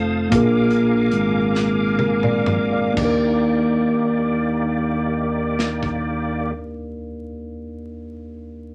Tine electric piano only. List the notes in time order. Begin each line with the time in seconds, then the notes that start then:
Already playing: C4 D#4 F4 A4 C5
0.29 A#2 A#3 C4 F4
0.34 D4 G#4 A#4
1.99 G4 A#4
2.24 A#4 D5
2.72 D5 F5
2.92 A#3 D4
2.98 D#2 D#4 G4
3.05 A#4